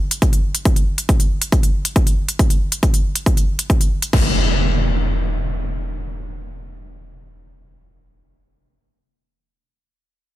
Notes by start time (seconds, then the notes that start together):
0.11 closed hi-hat
0.22 kick, closed hi-hat
0.33 closed hi-hat
0.55 closed hi-hat
0.65 kick, closed hi-hat
0.76 closed hi-hat
0.98 closed hi-hat
1.09 kick, closed hi-hat
1.20 closed hi-hat
1.42 closed hi-hat
1.52 kick, closed hi-hat
1.63 closed hi-hat
1.85 closed hi-hat
1.96 kick, closed hi-hat
2.07 closed hi-hat
2.29 closed hi-hat
2.39 kick, closed hi-hat
2.50 closed hi-hat
2.72 closed hi-hat
2.83 kick, closed hi-hat
2.94 closed hi-hat
3.15 closed hi-hat
3.26 kick, closed hi-hat
3.37 closed hi-hat
3.59 closed hi-hat
3.70 kick, closed hi-hat
3.81 closed hi-hat
4.02 closed hi-hat
4.13 kick, crash, impact